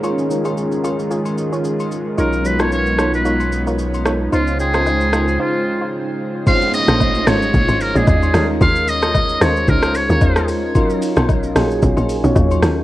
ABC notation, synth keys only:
X:1
M:4/4
L:1/16
Q:"Swing 16ths" 1/4=112
K:Ebdor
V:1 name="Synth keys"
[A,DEFB] z [A,DEFB]6 z8 | [^F,^C^D^E^A]2 [F,CDE=B]6 z8 | [A,DEFc]2 [A,DEF=g]6 z8 | [A,CDEFc]4- [A,CDEFc] z [A,DEFd]4 z [A,DEF=de]3 [=G,A,_DEFB]2- |
[=G,A,DEFB]4 z2 [A,DEFc]4 z [A,DEFB]4 z | [^F,^C^D^E^A]4- [F,CDEA] z [F,CDE_A]4 z [F,CDE^c]4 z |]